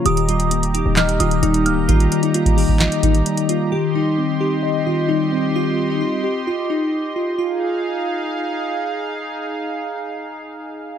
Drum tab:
HH |xxxxxxx-xxxxxxx-|xxxxxxo-xxxxxxx-|----------------|----------------|
CP |--------x-------|--------x-------|----------------|----------------|
SD |--------o-------|--------o-------|----------------|----------------|
BD |----------------|o----o-o--o-----|----------------|----------------|

HH |----------------|----------------|
CP |----------------|----------------|
SD |----------------|----------------|
BD |----------------|----------------|